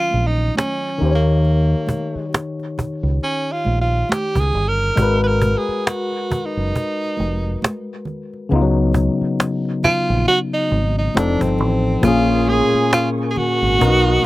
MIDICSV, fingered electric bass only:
0, 0, Header, 1, 3, 480
1, 0, Start_track
1, 0, Key_signature, -6, "minor"
1, 0, Tempo, 882353
1, 785, Time_signature, 4, 2, 24, 8
1, 7756, End_track
2, 0, Start_track
2, 0, Title_t, "Fingered electric bass"
2, 0, Program_c, 0, 33
2, 75, Note_on_c, 0, 34, 80
2, 268, Note_off_c, 0, 34, 0
2, 552, Note_on_c, 0, 39, 95
2, 943, Note_off_c, 0, 39, 0
2, 1650, Note_on_c, 0, 37, 83
2, 1730, Note_off_c, 0, 37, 0
2, 1992, Note_on_c, 0, 34, 82
2, 2186, Note_off_c, 0, 34, 0
2, 2373, Note_on_c, 0, 37, 84
2, 2452, Note_off_c, 0, 37, 0
2, 2472, Note_on_c, 0, 31, 91
2, 2666, Note_off_c, 0, 31, 0
2, 2708, Note_on_c, 0, 32, 110
2, 3018, Note_off_c, 0, 32, 0
2, 3574, Note_on_c, 0, 30, 83
2, 3653, Note_off_c, 0, 30, 0
2, 3914, Note_on_c, 0, 29, 93
2, 4107, Note_off_c, 0, 29, 0
2, 4633, Note_on_c, 0, 37, 102
2, 4941, Note_off_c, 0, 37, 0
2, 5493, Note_on_c, 0, 34, 86
2, 5573, Note_off_c, 0, 34, 0
2, 5830, Note_on_c, 0, 32, 93
2, 6025, Note_off_c, 0, 32, 0
2, 6071, Note_on_c, 0, 29, 98
2, 6183, Note_off_c, 0, 29, 0
2, 6211, Note_on_c, 0, 31, 78
2, 6311, Note_off_c, 0, 31, 0
2, 6311, Note_on_c, 0, 33, 88
2, 6506, Note_off_c, 0, 33, 0
2, 6550, Note_on_c, 0, 34, 105
2, 6859, Note_off_c, 0, 34, 0
2, 7410, Note_on_c, 0, 32, 83
2, 7491, Note_off_c, 0, 32, 0
2, 7519, Note_on_c, 0, 35, 102
2, 7710, Note_off_c, 0, 35, 0
2, 7756, End_track
3, 0, Start_track
3, 0, Title_t, "Muted fingered electric bass strokes"
3, 1172, Note_on_c, 9, 29, 42
3, 1227, Note_off_c, 9, 29, 0
3, 1521, Note_on_c, 9, 29, 46
3, 1576, Note_off_c, 9, 29, 0
3, 3093, Note_on_c, 9, 29, 46
3, 3147, Note_off_c, 9, 29, 0
3, 3439, Note_on_c, 9, 29, 44
3, 3494, Note_off_c, 9, 29, 0
3, 5012, Note_on_c, 9, 29, 49
3, 5066, Note_off_c, 9, 29, 0
3, 5359, Note_on_c, 9, 29, 48
3, 5414, Note_off_c, 9, 29, 0
3, 6932, Note_on_c, 9, 29, 52
3, 6987, Note_off_c, 9, 29, 0
3, 7274, Note_on_c, 9, 29, 50
3, 7328, Note_off_c, 9, 29, 0
3, 7756, End_track
0, 0, End_of_file